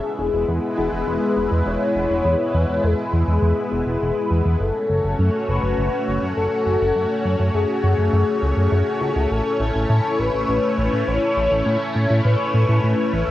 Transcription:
Already playing: analog synth pad G#3 B3 E4 B4, soft synth lead G#4
0.19 analog synth bass E1
0.34 analog synth bass E1
0.48 analog synth bass E2
0.78 analog synth bass E1, soft synth lead G#4
0.92 analog synth bass E1
1.07 analog synth bass E1
1.37 analog synth bass E1
1.51 analog synth bass E2
1.66 analog synth bass E1, soft synth lead C#5
1.95 analog synth bass E1
2.10 analog synth bass E1
2.25 analog synth bass E2
2.54 analog synth bass E2
2.69 analog synth bass E2
2.84 analog synth bass E2, soft synth lead G#4
3.13 analog synth bass E2
3.28 analog synth bass E2
3.42 analog synth bass E2
3.72 analog synth bass E1
3.87 analog synth bass E1
4.01 analog synth bass E1
4.31 analog synth bass E2
4.45 analog synth bass E2
4.60 analog synth bass F#1, analog synth pad A3 C#4 F#4 C#5, soft synth lead A4
4.90 analog synth bass F#1
5.04 analog synth bass F#1
5.19 analog synth bass F#2
5.48 analog synth bass F#1, soft synth lead B4
5.63 analog synth bass F#1
5.78 analog synth bass F#1
6.07 analog synth bass F#1
6.22 analog synth bass F#2
6.37 analog synth bass F#1, soft synth lead A4
6.66 analog synth bass F#1
6.81 analog synth bass F#1
6.95 analog synth bass F#2
7.25 analog synth bass F#2
7.40 analog synth bass F#2
7.54 analog synth bass F#2, soft synth lead G#4
7.84 analog synth bass F#2
7.98 analog synth bass F#2
8.13 analog synth bass F#2
8.42 analog synth bass C#2
8.57 analog synth bass F#2
8.72 analog synth bass F#2
9.01 analog synth bass C#2
9.16 analog synth bass C#2
9.31 analog synth bass A1, analog synth pad E4, soft synth lead A4
9.60 analog synth bass A1
9.75 analog synth bass A1
9.90 analog synth bass A2
10.19 analog synth bass A1, soft synth lead B4
10.34 analog synth bass A1
10.48 analog synth bass A1
10.78 analog synth bass A1
10.93 analog synth bass A2
11.07 analog synth bass A1, soft synth lead C#5
11.37 analog synth bass A1
11.51 analog synth bass A1
11.66 analog synth bass A2
11.95 analog synth bass A2
12.10 analog synth bass A2
12.25 analog synth bass A2, soft synth lead B4
12.54 analog synth bass A2
12.69 analog synth bass A2
12.84 analog synth bass A2
13.13 analog synth bass A1

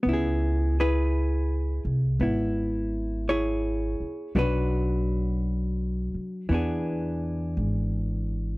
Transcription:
0.03 upright bass C#2, hollow-body jazz guitar B3
0.09 hollow-body jazz guitar E4
0.13 hollow-body jazz guitar G#4
0.80 hollow-body jazz guitar E4 G#4 B4
1.85 upright bass C2
2.20 upright bass G#1, hollow-body jazz guitar B3 E4
3.29 hollow-body jazz guitar E4 G#4 C#5
4.00 muted upright bass stroke
4.35 upright bass B1, hollow-body jazz guitar F#3 A3 D4 B4
4.40 hollow-body jazz guitar D4 F#4
6.14 muted upright bass stroke
6.49 upright bass E2, hollow-body jazz guitar E3 B3 D4
6.54 hollow-body jazz guitar G#4
7.57 upright bass G#1

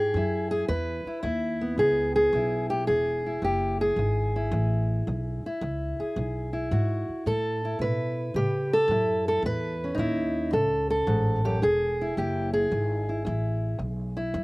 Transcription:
Already playing: steel-string acoustic guitar E2 E4 G#4, upright bass G#2
0.14 steel-string acoustic guitar E2 E4, upright bass F#2
0.51 steel-string acoustic guitar G#4
0.68 upright bass E2, steel-string acoustic guitar E2 B4
1.06 steel-string acoustic guitar E4, muted upright bass stroke
1.23 upright bass D#2, steel-string acoustic guitar E2 E4
1.61 steel-string acoustic guitar B3
1.78 upright bass C#2, steel-string acoustic guitar E2 G#4
2.16 steel-string acoustic guitar G#4
2.33 upright bass B1, steel-string acoustic guitar E2 E4
2.70 steel-string acoustic guitar G4
2.87 upright bass E1, steel-string acoustic guitar E2 G#4
3.26 steel-string acoustic guitar E4
3.42 upright bass F#1, steel-string acoustic guitar E2 G4
3.81 steel-string acoustic guitar G#4
3.96 upright bass G#1, steel-string acoustic guitar E2
4.36 steel-string acoustic guitar E4
4.52 upright bass A1, steel-string acoustic guitar E2
5.07 upright bass B1, steel-string acoustic guitar E2
5.44 steel-string acoustic guitar E4, muted upright bass stroke
5.61 upright bass C#2, steel-string acoustic guitar E2
5.99 steel-string acoustic guitar G#4, muted upright bass stroke
6.16 upright bass B1, steel-string acoustic guitar E2
6.53 steel-string acoustic guitar E4
6.71 steel-string acoustic guitar E2 F#4, upright bass G#2
7.09 muted upright bass stroke
7.26 upright bass A2, steel-string acoustic guitar A2 A4
7.65 steel-string acoustic guitar E4
7.79 steel-string acoustic guitar A2 B4, upright bass B2
8.34 steel-string acoustic guitar A2 G4, upright bass C#3
8.73 steel-string acoustic guitar A4
8.88 upright bass F#2, steel-string acoustic guitar A2 E4
9.28 steel-string acoustic guitar A4
9.42 upright bass E2, steel-string acoustic guitar A2 B4
9.84 steel-string acoustic guitar C#4
9.95 upright bass D#2, steel-string acoustic guitar D#4
9.99 steel-string acoustic guitar A2 E4
10.53 upright bass C#2, steel-string acoustic guitar A2 A4
10.90 steel-string acoustic guitar A4
11.07 upright bass A1, steel-string acoustic guitar G#2
11.45 steel-string acoustic guitar F#2 G4
11.62 upright bass E1, steel-string acoustic guitar E2 G#4
12.01 steel-string acoustic guitar E4
12.17 upright bass F#1, steel-string acoustic guitar E2 G4
12.54 steel-string acoustic guitar G#4
12.72 upright bass G#1, steel-string acoustic guitar E2
13.09 steel-string acoustic guitar E4
13.25 upright bass A1, steel-string acoustic guitar E2 E4
13.79 upright bass B1, steel-string acoustic guitar E2
14.17 steel-string acoustic guitar E4
14.34 steel-string acoustic guitar E2, upright bass F#2

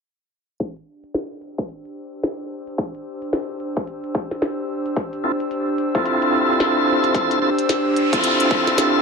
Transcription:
0.60 analog synth pad D4, kick, closed hi-hat
0.76 closed hi-hat
0.86 analog synth pad G4
1.04 closed hi-hat
1.14 snare, closed hi-hat
1.27 analog synth pad C5 E6
1.42 closed hi-hat
1.58 kick, closed hi-hat
1.69 closed hi-hat
1.85 closed hi-hat
2.23 snare, closed hi-hat
2.67 closed hi-hat
2.78 kick, closed hi-hat
2.95 closed hi-hat
3.22 closed hi-hat
3.33 snare, closed hi-hat
3.60 closed hi-hat
3.77 kick, closed hi-hat
3.87 closed hi-hat
4.04 closed hi-hat
4.15 kick
4.31 snare
4.42 snare, closed hi-hat
4.86 closed hi-hat
4.96 kick, closed hi-hat
5.13 closed hi-hat
5.24 tonewheel organ C4 E4 F4 A4
5.40 closed hi-hat
5.51 closed hi-hat
5.78 closed hi-hat
5.95 tonewheel organ C4 E4 F4 A4, kick, closed hi-hat
6.06 closed hi-hat
6.22 closed hi-hat
6.60 snare, closed hi-hat
7.04 closed hi-hat
7.15 kick, closed hi-hat, noise sweep
7.31 closed hi-hat
7.42 tonewheel organ C4 E4 F4 A4
7.59 closed hi-hat
7.69 snare, closed hi-hat
7.96 closed hi-hat
8.13 tonewheel organ C4 E4 F4 A4, kick, closed hi-hat
8.24 closed hi-hat
8.40 closed hi-hat
8.51 kick
8.67 snare
8.78 snare, closed hi-hat

